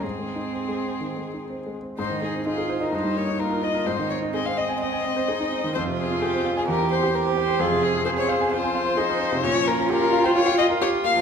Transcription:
0.02 0.99 G#2 soft
0.02 1.74 C4 medium
0.02 1.78 C4 medium
0.02 1.74 G#4 medium
0.19 0.46 G#3 soft
0.36 0.62 D#4 soft
0.53 0.79 C4 soft
0.68 0.95 G#3 soft
0.85 1.11 C4 soft
1.01 1.27 D#3 soft
1.17 1.43 G#3 soft
1.34 1.60 D#4 soft
1.50 1.76 C4 soft
1.66 1.92 G#3 soft
1.83 1.99 C4 soft
1.98 2.90 G#2 medium
1.98 2.42 D#4 medium
1.98 3.83 D#4 medium
1.98 2.20 C5 medium
2.11 2.29 D#3 soft
2.22 2.41 G#3 soft
2.22 2.45 G#4 medium
2.34 2.53 C4 soft
2.45 2.65 D#4 medium
2.45 2.92 F4 medium
2.45 2.81 G#4 medium
2.58 2.77 G#4 medium
2.70 2.88 C5 medium
2.81 2.96 A#4 medium
2.81 2.93 D#5 medium
2.92 3.84 G2 medium
2.92 3.39 D#4 medium
2.92 3.19 C5 medium
3.03 3.23 G3 soft
3.16 3.35 A#3 soft
3.16 3.41 C#5 medium
3.27 3.47 D#4 medium
3.39 3.58 A#3 soft
3.39 3.89 F4 medium
3.39 3.65 A#4 medium
3.51 3.70 A#4 medium
3.63 3.82 D#5 soft
3.63 3.87 D#5 medium
3.75 3.87 A#4 medium
3.86 5.71 G#2 medium
3.86 7.56 C4 medium
3.86 4.36 D#4 medium
3.86 4.10 C5 medium
3.99 4.18 D#3 soft
4.10 4.30 C4 soft
4.10 4.18 C#5 medium
4.22 4.41 D#4 soft
4.34 5.30 C4 medium
4.34 4.53 G#4 medium
4.34 4.47 D#5 medium
4.46 4.65 C5 medium
4.46 4.59 F5 medium
4.57 4.79 D#5 medium
4.57 4.77 D#5 medium
4.69 4.88 G#5 medium
4.80 5.73 D#5 loud
4.80 5.00 D#5 medium
4.93 5.12 G#5 medium
5.05 5.24 D#5 medium
5.17 5.35 C5 medium
5.28 5.74 D#4 medium
5.28 5.47 G#4 medium
5.40 5.59 D#4 medium
5.53 5.71 C4 medium
5.64 5.76 D#3 medium
5.74 6.66 F2 medium
5.74 6.66 F4 medium
5.74 5.82 C5 loud
5.87 6.06 C3 soft
5.98 6.18 C4 soft
5.98 6.23 G#4 medium
6.11 6.29 F4 medium
6.22 6.56 G4 medium
6.22 6.40 G#4 medium
6.33 6.52 C5 medium
6.45 6.64 F5 medium
6.57 6.67 G#4 medium
6.57 6.69 G#5 medium
6.67 7.57 E2 medium
6.67 7.13 G4 medium
6.67 6.91 A#4 loud
6.80 6.98 E3 medium
6.91 7.10 C4 medium
6.91 7.16 C5 medium
7.03 7.21 G4 medium
7.14 7.33 C4 medium
7.14 7.61 G4 medium
7.14 7.37 A#4 medium
7.26 7.44 C5 medium
7.37 7.62 C5 medium
7.37 7.56 G5 medium
7.48 7.60 C5 medium
7.59 9.40 F2 medium
7.59 9.40 C4 medium
7.59 7.85 F4 loud
7.59 8.06 G#4 medium
7.71 7.90 C3 medium
7.83 8.02 C4 medium
7.83 8.05 G#4 loud
7.94 8.13 F4 medium
8.05 8.24 G#4 medium
8.05 8.53 G#4 medium
8.05 8.10 C5 medium
8.17 8.36 C5 medium
8.17 8.31 C#5 medium
8.29 8.52 C5 medium
8.29 8.47 F5 medium
8.41 8.59 G#5 medium
8.51 8.99 F4 medium
8.51 9.45 C5 loud
8.51 8.70 F5 medium
8.63 8.81 G#5 medium
8.75 8.93 F5 medium
8.86 9.05 C5 medium
8.97 9.43 D#4 medium
8.97 9.16 G#4 medium
9.09 9.28 F4 medium
9.20 9.39 C4 medium
9.32 9.44 C3 medium
9.43 11.21 A#2 medium
9.43 10.33 C#4 medium
9.43 11.21 F4 medium
9.43 9.69 C#5 loud
9.55 9.74 F3 medium
9.67 9.85 A#3 medium
9.67 9.90 A#4 loud
9.79 9.97 F4 medium
9.90 10.08 G4 medium
9.90 10.27 A#4 loud
10.02 10.19 A#4 medium
10.13 10.30 F5 medium
10.24 10.37 C5 medium
10.24 10.42 G5 medium
10.35 11.21 F4 medium
10.35 10.58 C#5 loud
10.35 10.54 F5 medium
10.46 10.65 G5 medium
10.58 10.66 D#5 loud
10.58 10.77 F5 medium
10.70 10.88 A#4 medium
10.82 11.00 G4 medium
10.82 10.90 C#5 loud
10.93 11.12 F4 medium
11.04 11.21 A#3 medium
11.04 11.21 F5 loud
11.16 11.21 F3 medium

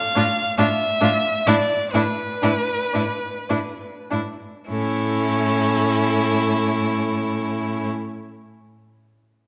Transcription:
0.00 0.59 F5 loud
0.15 0.24 A2 loud
0.15 0.23 D4 medium
0.15 0.25 F4 medium
0.58 0.66 A2 loud
0.58 0.66 D4 medium
0.58 0.67 F4 medium
0.58 1.48 E5 loud
1.01 1.10 A2 loud
1.01 1.09 D4 medium
1.01 1.11 F4 medium
1.47 1.55 A2 loud
1.47 1.55 D4 loud
1.47 1.55 E4 medium
1.47 1.94 D5 loud
1.93 2.02 A2 loud
1.93 2.03 D4 medium
1.93 2.02 E4 medium
1.93 4.11 B4 loud
2.42 2.51 A2 loud
2.42 2.50 D4 medium
2.42 2.51 E4 medium
2.93 3.03 A2 medium
2.93 3.01 D4 medium
2.93 3.03 E4 medium
3.50 3.58 A2 medium
3.50 3.58 D4 medium
3.50 3.58 E4 medium
4.11 4.20 A2 medium
4.11 4.19 D4 medium
4.11 4.20 E4 medium
4.69 7.86 A2 medium
4.69 7.87 C#4 medium
4.69 7.86 E4 medium
4.69 7.85 A4 loud

